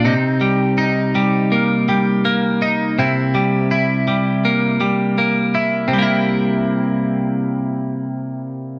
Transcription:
0, 0, Header, 1, 2, 480
1, 0, Start_track
1, 0, Tempo, 732601
1, 35, Time_signature, 4, 2, 24, 8
1, 5761, End_track
2, 0, Start_track
2, 0, Title_t, "Clean electric guitar"
2, 0, Program_c, 0, 27
2, 0, Note_on_c, 0, 46, 82
2, 0, Note_on_c, 0, 62, 63
2, 30, Note_on_c, 0, 48, 71
2, 35, Note_on_c, 0, 63, 58
2, 85, Note_off_c, 0, 46, 0
2, 86, Note_off_c, 0, 62, 0
2, 269, Note_on_c, 0, 55, 60
2, 502, Note_off_c, 0, 63, 0
2, 510, Note_on_c, 0, 63, 64
2, 751, Note_off_c, 0, 55, 0
2, 754, Note_on_c, 0, 55, 54
2, 995, Note_on_c, 0, 58, 52
2, 1233, Note_off_c, 0, 55, 0
2, 1236, Note_on_c, 0, 55, 54
2, 1472, Note_off_c, 0, 58, 0
2, 1474, Note_on_c, 0, 58, 58
2, 1709, Note_off_c, 0, 63, 0
2, 1717, Note_on_c, 0, 63, 62
2, 1949, Note_off_c, 0, 48, 0
2, 1956, Note_off_c, 0, 63, 0
2, 1956, Note_on_c, 0, 48, 71
2, 1961, Note_on_c, 0, 64, 60
2, 2190, Note_off_c, 0, 55, 0
2, 2193, Note_on_c, 0, 55, 58
2, 2429, Note_off_c, 0, 64, 0
2, 2432, Note_on_c, 0, 64, 63
2, 2452, Note_off_c, 0, 58, 0
2, 2668, Note_off_c, 0, 55, 0
2, 2671, Note_on_c, 0, 55, 52
2, 2915, Note_on_c, 0, 58, 52
2, 3146, Note_off_c, 0, 55, 0
2, 3148, Note_on_c, 0, 55, 53
2, 3392, Note_off_c, 0, 58, 0
2, 3394, Note_on_c, 0, 58, 52
2, 3632, Note_off_c, 0, 64, 0
2, 3634, Note_on_c, 0, 64, 57
2, 3844, Note_off_c, 0, 48, 0
2, 3851, Note_on_c, 0, 48, 74
2, 3885, Note_off_c, 0, 55, 0
2, 3887, Note_on_c, 0, 55, 69
2, 3918, Note_off_c, 0, 58, 0
2, 3921, Note_on_c, 0, 58, 72
2, 3941, Note_off_c, 0, 64, 0
2, 3946, Note_on_c, 0, 64, 72
2, 5761, Note_off_c, 0, 48, 0
2, 5761, Note_off_c, 0, 55, 0
2, 5761, Note_off_c, 0, 58, 0
2, 5761, Note_off_c, 0, 64, 0
2, 5761, End_track
0, 0, End_of_file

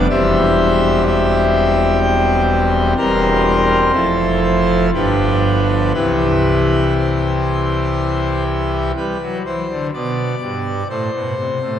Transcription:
0, 0, Header, 1, 2, 480
1, 0, Start_track
1, 0, Key_signature, 0, "major"
1, 0, Tempo, 961538
1, 51, Time_signature, 3, 2, 24, 8
1, 1971, Tempo, 1003344
1, 4371, Tempo, 967742
1, 5772, End_track
2, 0, Start_track
2, 0, Title_t, "Pipe organ"
2, 0, Program_c, 0, 19
2, 49, Note_on_c, 0, 28, 64
2, 49, Note_on_c, 0, 55, 58
2, 49, Note_on_c, 0, 60, 53
2, 50, Note_on_c, 0, 40, 65
2, 50, Note_on_c, 0, 67, 56
2, 50, Note_on_c, 0, 76, 108
2, 516, Note_off_c, 0, 76, 0
2, 534, Note_on_c, 0, 76, 102
2, 994, Note_off_c, 0, 76, 0
2, 1007, Note_on_c, 0, 79, 96
2, 1210, Note_off_c, 0, 79, 0
2, 1465, Note_off_c, 0, 28, 0
2, 1465, Note_off_c, 0, 55, 0
2, 1465, Note_off_c, 0, 60, 0
2, 1466, Note_off_c, 0, 40, 0
2, 1466, Note_off_c, 0, 67, 0
2, 1482, Note_on_c, 0, 28, 68
2, 1483, Note_on_c, 0, 40, 71
2, 1483, Note_on_c, 0, 55, 57
2, 1483, Note_on_c, 0, 70, 53
2, 1483, Note_on_c, 0, 72, 111
2, 1484, Note_on_c, 0, 60, 55
2, 1953, Note_off_c, 0, 28, 0
2, 1953, Note_off_c, 0, 55, 0
2, 1954, Note_off_c, 0, 40, 0
2, 1954, Note_off_c, 0, 60, 0
2, 1954, Note_off_c, 0, 70, 0
2, 1961, Note_on_c, 0, 53, 50
2, 1961, Note_on_c, 0, 64, 46
2, 1961, Note_on_c, 0, 69, 50
2, 1963, Note_on_c, 0, 29, 59
2, 1963, Note_on_c, 0, 41, 54
2, 2185, Note_off_c, 0, 72, 0
2, 2202, Note_on_c, 0, 72, 87
2, 2407, Note_off_c, 0, 72, 0
2, 2427, Note_off_c, 0, 53, 0
2, 2427, Note_off_c, 0, 64, 0
2, 2427, Note_off_c, 0, 69, 0
2, 2428, Note_off_c, 0, 29, 0
2, 2428, Note_off_c, 0, 41, 0
2, 2445, Note_on_c, 0, 31, 52
2, 2445, Note_on_c, 0, 43, 56
2, 2445, Note_on_c, 0, 62, 44
2, 2446, Note_on_c, 0, 67, 46
2, 2446, Note_on_c, 0, 71, 83
2, 2447, Note_on_c, 0, 53, 48
2, 2914, Note_off_c, 0, 67, 0
2, 2916, Note_off_c, 0, 31, 0
2, 2916, Note_off_c, 0, 43, 0
2, 2916, Note_off_c, 0, 62, 0
2, 2916, Note_off_c, 0, 71, 0
2, 2917, Note_off_c, 0, 53, 0
2, 2924, Note_on_c, 0, 36, 52
2, 2924, Note_on_c, 0, 52, 45
2, 2924, Note_on_c, 0, 64, 45
2, 2924, Note_on_c, 0, 67, 48
2, 2925, Note_on_c, 0, 48, 56
2, 2926, Note_on_c, 0, 71, 86
2, 3399, Note_off_c, 0, 71, 0
2, 3417, Note_on_c, 0, 72, 57
2, 4115, Note_off_c, 0, 72, 0
2, 4347, Note_off_c, 0, 52, 0
2, 4347, Note_off_c, 0, 64, 0
2, 4348, Note_off_c, 0, 36, 0
2, 4348, Note_off_c, 0, 48, 0
2, 4348, Note_off_c, 0, 67, 0
2, 4372, Note_on_c, 0, 55, 66
2, 4372, Note_on_c, 0, 71, 87
2, 4474, Note_off_c, 0, 55, 0
2, 4497, Note_on_c, 0, 54, 58
2, 4577, Note_off_c, 0, 71, 0
2, 4597, Note_off_c, 0, 54, 0
2, 4614, Note_on_c, 0, 52, 54
2, 4614, Note_on_c, 0, 72, 77
2, 4716, Note_off_c, 0, 52, 0
2, 4735, Note_on_c, 0, 50, 50
2, 4819, Note_off_c, 0, 72, 0
2, 4837, Note_off_c, 0, 50, 0
2, 4852, Note_on_c, 0, 47, 61
2, 4852, Note_on_c, 0, 74, 79
2, 5058, Note_off_c, 0, 47, 0
2, 5090, Note_on_c, 0, 43, 56
2, 5295, Note_off_c, 0, 43, 0
2, 5319, Note_off_c, 0, 74, 0
2, 5328, Note_on_c, 0, 45, 62
2, 5329, Note_on_c, 0, 72, 79
2, 5432, Note_off_c, 0, 45, 0
2, 5448, Note_on_c, 0, 47, 54
2, 5551, Note_off_c, 0, 47, 0
2, 5568, Note_on_c, 0, 48, 53
2, 5671, Note_off_c, 0, 48, 0
2, 5685, Note_on_c, 0, 45, 49
2, 5772, Note_off_c, 0, 45, 0
2, 5772, Note_off_c, 0, 72, 0
2, 5772, End_track
0, 0, End_of_file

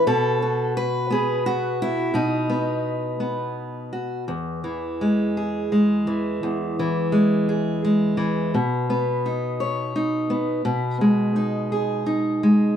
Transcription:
0, 0, Header, 1, 2, 480
1, 0, Start_track
1, 0, Key_signature, 4, "major"
1, 0, Tempo, 696056
1, 32, Time_signature, 6, 3, 24, 8
1, 1472, Tempo, 713436
1, 5312, Tempo, 700117
1, 7232, Tempo, 724638
1, 8638, End_track
2, 0, Start_track
2, 0, Title_t, "Steel-string acoustic guitar"
2, 0, Program_c, 0, 25
2, 47, Note_on_c, 0, 47, 78
2, 48, Note_on_c, 0, 69, 96
2, 291, Note_on_c, 0, 66, 47
2, 518, Note_off_c, 0, 69, 0
2, 530, Note_on_c, 0, 71, 85
2, 761, Note_on_c, 0, 59, 65
2, 771, Note_off_c, 0, 66, 0
2, 774, Note_on_c, 0, 68, 75
2, 1000, Note_off_c, 0, 68, 0
2, 1008, Note_on_c, 0, 66, 89
2, 1238, Note_off_c, 0, 71, 0
2, 1255, Note_on_c, 0, 64, 81
2, 1466, Note_off_c, 0, 47, 0
2, 1474, Note_on_c, 0, 47, 69
2, 1479, Note_off_c, 0, 66, 0
2, 1482, Note_on_c, 0, 63, 72
2, 1484, Note_off_c, 0, 64, 0
2, 1712, Note_off_c, 0, 59, 0
2, 1715, Note_on_c, 0, 59, 41
2, 2180, Note_off_c, 0, 59, 0
2, 2189, Note_on_c, 0, 59, 57
2, 2675, Note_off_c, 0, 63, 0
2, 2677, Note_on_c, 0, 66, 42
2, 2886, Note_off_c, 0, 59, 0
2, 2888, Note_off_c, 0, 66, 0
2, 2914, Note_on_c, 0, 40, 64
2, 2917, Note_off_c, 0, 47, 0
2, 3157, Note_on_c, 0, 52, 51
2, 3408, Note_on_c, 0, 56, 42
2, 3650, Note_on_c, 0, 68, 45
2, 3876, Note_off_c, 0, 56, 0
2, 3884, Note_on_c, 0, 56, 46
2, 4112, Note_off_c, 0, 52, 0
2, 4120, Note_on_c, 0, 52, 50
2, 4332, Note_off_c, 0, 68, 0
2, 4354, Note_off_c, 0, 40, 0
2, 4363, Note_on_c, 0, 40, 64
2, 4595, Note_off_c, 0, 52, 0
2, 4607, Note_on_c, 0, 52, 57
2, 4820, Note_off_c, 0, 56, 0
2, 4828, Note_on_c, 0, 56, 48
2, 5073, Note_on_c, 0, 68, 45
2, 5306, Note_off_c, 0, 56, 0
2, 5314, Note_on_c, 0, 56, 52
2, 5530, Note_off_c, 0, 52, 0
2, 5538, Note_on_c, 0, 52, 59
2, 5765, Note_off_c, 0, 68, 0
2, 5785, Note_off_c, 0, 52, 0
2, 5793, Note_on_c, 0, 47, 68
2, 5794, Note_off_c, 0, 56, 0
2, 5797, Note_off_c, 0, 40, 0
2, 6036, Note_on_c, 0, 59, 57
2, 6282, Note_on_c, 0, 63, 41
2, 6518, Note_on_c, 0, 73, 49
2, 6753, Note_off_c, 0, 63, 0
2, 6762, Note_on_c, 0, 63, 50
2, 6994, Note_off_c, 0, 59, 0
2, 6997, Note_on_c, 0, 59, 53
2, 7206, Note_off_c, 0, 73, 0
2, 7208, Note_off_c, 0, 63, 0
2, 7228, Note_off_c, 0, 47, 0
2, 7236, Note_on_c, 0, 47, 66
2, 7474, Note_off_c, 0, 59, 0
2, 7476, Note_on_c, 0, 56, 53
2, 7707, Note_on_c, 0, 63, 43
2, 7945, Note_on_c, 0, 68, 47
2, 8166, Note_off_c, 0, 63, 0
2, 8174, Note_on_c, 0, 63, 48
2, 8410, Note_off_c, 0, 56, 0
2, 8418, Note_on_c, 0, 56, 54
2, 8638, Note_off_c, 0, 47, 0
2, 8638, Note_off_c, 0, 56, 0
2, 8638, Note_off_c, 0, 63, 0
2, 8638, Note_off_c, 0, 68, 0
2, 8638, End_track
0, 0, End_of_file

